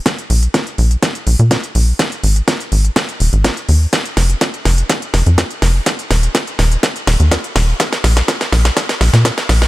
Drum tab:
HH |xxoxxxoxxxoxxxo-|xxoxxxoxxxoxxxo-|xxoxxxoxxxoxxxo-|xxoxxxoxxxoxxxo-|
SD |o---o---o---o---|o---o---o---o---|o-o-o-o-o-o-o-o-|o-o-o-o-o-o-o-o-|
BD |o---o---o---o---|o---o---o---o---|o---o---o---o---|o---o---o---o---|

HH |xxoxxxoxxxoxxxo-|
SD |oooooooooooooooo|
BD |o---o---o---o---|